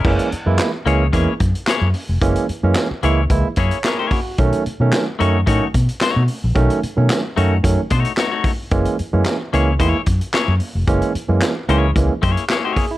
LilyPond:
<<
  \new Staff \with { instrumentName = "Clean electric guitar" } { \time 4/4 \key fis \mixolydian \tempo 4 = 111 r4. <ais e' gis' cis''>16 r16 <ais e' gis' cis''>16 r8. <ais e' gis' cis''>16 r8. | r4. <ais e' gis' cis''>16 r8. <ais e' gis' cis''>16 r16 <ais e' gis' cis''>16 <ais e' gis' cis''>16 r8 | r4. <a dis' fis' cis''>16 r16 <a dis' fis' cis''>16 r8. <a dis' fis' cis''>16 r8. | r4. <a dis' fis' cis''>16 r8. <a dis' fis' cis''>16 r16 <a dis' fis' cis''>16 <a dis' fis' cis''>16 r8 |
r4. <ais e' gis' cis''>16 r16 <ais e' gis' cis''>16 r8. <ais e' gis' cis''>16 r8. | r4. <ais e' gis' cis''>16 r8. <ais e' gis' cis''>16 r16 <ais e' gis' cis''>16 <ais e' gis' cis''>16 r8 | }
  \new Staff \with { instrumentName = "Tine electric piano" } { \time 4/4 \key fis \mixolydian r1 | r2 r8 cis''8 ais'8 fis'8 | r1 | r1 |
r1 | r2. r16 fis'16 gis'16 e'16 | }
  \new Staff \with { instrumentName = "Tine electric piano" } { \time 4/4 \key fis \mixolydian <e gis ais cis'>8 r16 <e gis ais e'>8 r16 <e gis ais cis'>16 r16 <e gis ais cis'>16 r16 <ais cis'>16 r8. <ais cis'>16 r16 | <e gis ais cis'>8 r16 <e gis ais cis'>8 r16 <e gis ais e'>16 r16 <e gis ais e'>16 r16 <ais cis'>16 r8. <ais cis'>16 r16 | <dis fis a cis'>8 r16 <dis fis a cis'>8 r16 <dis fis a cis'>16 r16 <dis fis a cis'>16 r16 <a cis'>16 r8. <a cis'>16 r16 | <dis fis a cis'>8 r16 <dis fis a cis'>8 r16 <dis fis a cis'>16 r16 <dis fis a cis'>16 r16 <a cis'>16 r8. <a cis'>16 r16 |
<e gis ais cis'>8 r16 <e gis ais cis'>8 r16 <e gis ais cis'>16 r16 <e gis ais e'>16 r16 <ais cis'>16 r8. <ais cis'>16 r16 | <e gis ais cis'>8 r16 <e gis ais cis'>8 r16 <e gis ais cis'>16 r16 <e gis ais cis'>16 r4. r16 | }
  \new Staff \with { instrumentName = "Fingered electric bass" } { \clef bass \time 4/4 \key fis \mixolydian fis,,16 r8 fis,16 r8 cis,8 e,16 r16 fis,16 r8 fis,16 r16 eis,,16 | fis,,16 r8 fis,16 r8 cis,8 cis,16 r16 fis,16 r4 r16 | b,,16 r8 b,16 r8 fis,8 a,16 r16 b,16 r8 b,16 r16 ais,,16 | b,,16 r8 b,16 r8 fis,8 fis,16 r16 b,16 r4 r16 |
fis,,16 r8 fis,16 r8 cis,8 e,16 r16 fis,16 r8 fis,16 r16 eis,,16 | fis,,16 r8 fis,16 r8 cis,8 cis,16 r16 fis,16 r4 r16 | }
  \new DrumStaff \with { instrumentName = "Drums" } \drummode { \time 4/4 <cymc bd>16 hh16 hh8 <hc hh sn>8 hh8 <hh bd>8 <hh bd>16 hh16 <hc hh sn>8 hho8 | <hh bd>16 hh16 hh8 <hc hh sn>8 hh8 <hh bd>8 <hh bd>16 hh16 <hc hh sn>8 <hho bd>8 | <hh bd>16 hh16 hh8 <hc hh sn>8 hh8 <hh bd>8 <hh bd>16 hh16 <hc hh sn>8 hho8 | <hh bd>16 hh16 hh8 <hc hh sn>8 hh8 <hh bd>8 <hh bd>16 hh16 <hc hh sn>8 <hho bd>8 |
<hh bd>16 hh16 hh8 <hc hh sn>8 hh8 <hh bd>8 <hh bd>16 hh16 <hc hh sn>8 hho8 | <hh bd>16 hh16 hh8 <hc hh sn>8 hh8 <hh bd>8 <hh bd>16 hh16 <hc hh sn>8 <hho bd>8 | }
>>